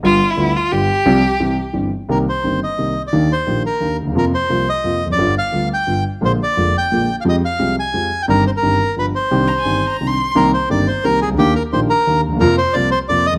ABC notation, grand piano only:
X:1
M:3/4
L:1/16
Q:1/4=175
K:Cphr
V:1 name="Grand piano" clef=bass
[G,,,G,,=D,G,=B,F]2 z2 [=D,,D,G,B,F]2 z2 [G,,,G,,D,G,B,F]2 z2 | [C,,C,F,G,CG]2 z2 [C,,C,=E,G,CG]2 z2 [G,,,G,,E,G,CG]2 z2 | [K:Cm] [C,,C,E,B,CG]2 z2 [G,,,G,,E,B,CG]2 z2 [C,,C,E,B,CG]2 z2 | [E,,E,B,DG]2 z2 [B,,,B,,E,B,DG]2 z2 [E,,E,B,DG]2 z/2 D,,/2 E,,/2 =E,,/2 |
[F,,C,F,B,F]2 z2 [C,,C,F,B,F]2 z2 [F,,C,F,B,F]2 z/2 =E,,/2 F,,/2 ^F,,/2 | [G,,,G,,D,G,=B,F]2 z2 [D,,D,G,B,F]2 z2 [G,,,G,,D,G,B,F]2 z2 | [B,,,B,,D,A,B,F]2 z2 [F,,,F,,D,A,B,F]2 z2 [B,,,B,,D,A,B,F]2 z2 | [F,,F,A,CG]2 z2 [C,,C,F,A,CG]2 z2 [F,,F,A,CG]2 z2 |
[G,,,G,,E,G,CG]2 z2 [G,,,G,,E,G,CG]2 z2 [G,,,G,,F,=B,DG]2 z2 | [C,,C,E,CDG]2 z2 [G,,,G,,E,CDG]2 z2 [C,,C,E,CDG]2 z2 | [C,,C,E,B,CG]2 z2 [G,,,G,,E,B,CG]2 z2 [C,,C,E,B,CG]2 z/2 C,,/2 _D,,/2 =D,,/2 | [E,,E,B,DG]2 z2 [B,,,B,,E,B,DG]2 z2 [E,,E,B,DG]2 z/2 D,,/2 E,,/2 =E,,/2 |
[F,,C,F,B,F]2 z2 [C,,C,F,B,F]2 z2 [F,,C,F,B,F]2 z/2 =E,,/2 F,,/2 z/2 |]